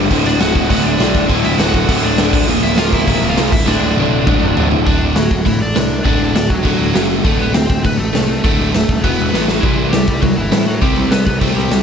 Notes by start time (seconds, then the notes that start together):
0.10 D1 D2 A2 D3, kick, crash
0.25 D1 D4 D5, crash
0.39 D1 D2 A2 D3 F#4 F#5, snare, crash
0.55 kick, crash
0.69 D1 D2 A2 D3 F#4 F#5, kick, crash
0.83 D1 D4 D5, crash
0.99 B1 D2 A2 D3, snare, crash
1.15 D1, kick, crash
1.29 D1 D2 A2 D3, kick, crash
1.44 D1 E4 E5, crash
1.59 D1 D2 A2 D3 F#4 F#5, snare, crash
1.74 D1, kick, crash
1.88 D1 D2 A2 D3 F#4 F#5, kick, crash
2.03 D1 D4 D5, crash
2.17 D1 D2 A2 D3, snare, crash
2.33 D1, kick, crash
2.47 D1 A#2 F3 A#3, crash
2.62 D1 E4 E5, crash
2.77 D1 A#2 F3 A#3 F4 F5, snare, crash
2.92 E4 E5, kick, crash
3.07 D1 A#2 F3 A#3, kick, crash
3.22 D1, crash
3.29 F4 F5
3.37 C2 A#2 F3 A#3, snare, crash
3.52 D1 E4 E5, kick, crash
3.66 D1 D2 A2 D3 D4 D5, snare
3.81 D1
3.97 D1 D2 A2 D3, high tom
4.11 D1
4.26 D1 D2 A2 D3, kick, mid tom
4.41 D1, mid tom
4.56 D1 D2 A2 D3, floor tom
4.70 D1, floor tom
4.85 D1 D2 A2 D3 D4 D5, kick, open hi-hat
5.00 D1
5.15 D1 D2 A2 F#3 F#4, snare, open hi-hat
5.31 D1, kick
5.45 D1 D2 A2 E3 E4, kick, open hi-hat
5.60 A1 D4 D5
5.75 C2 D2 A2, snare, open hi-hat
6.04 D1 D2 A2 D3 D4 D5, kick, open hi-hat
6.21 D1
6.34 D1 D2 A2 D4 D5, snare, open hi-hat
6.49 D1 F#3 F#4, kick
6.64 D1 D2 A2 D3, kick, open hi-hat
6.79 D1
6.94 F#1 F#2 C#3 F#3, snare, open hi-hat
7.24 D1 D2 A2 D3 A3 A4, kick, open hi-hat
7.38 D1 B3 B4
7.54 D1 D2 A2 C4 C5, snare, open hi-hat
7.67 D1 C4 C5, kick
7.83 D1 D2 A2 B3 B4, kick, open hi-hat
7.96 A1 A3 A4
8.13 C2 D2 A2, snare, open hi-hat
8.43 D1 D2 A2 D3 A3 A4, kick, open hi-hat
8.59 D1
8.72 D1 D2 A2 A3 A4, snare, open hi-hat
8.89 D#1, kick
9.02 E1 E2 B2 E3 B3 B4, kick, open hi-hat
9.20 E1
9.34 A1 A2 E3 A3, snare
9.48 snare
9.61 C2 C3 E3 G3 C4 E4, kick, crash
9.78 C2
9.91 C2 C3 G3 G4, snare, open hi-hat
10.08 C2, kick
10.22 C2 C3 F#3 G3 F#4, kick, open hi-hat
10.37 G1 E3 E4
10.52 A2 C3 G3, snare, open hi-hat
10.67 F#3 F#4
10.82 C2 C3 G3 C4 G4, kick, open hi-hat
10.97 C2
11.11 C2 C3 G3 B3 B4, snare, open hi-hat
11.26 C2 B3 B4, kick
11.38 C2 C3 A3 G4 A4, kick, open hi-hat
11.42 G3 C4
11.56 C2 G3 G4
11.71 C2 C3 G3, snare, open hi-hat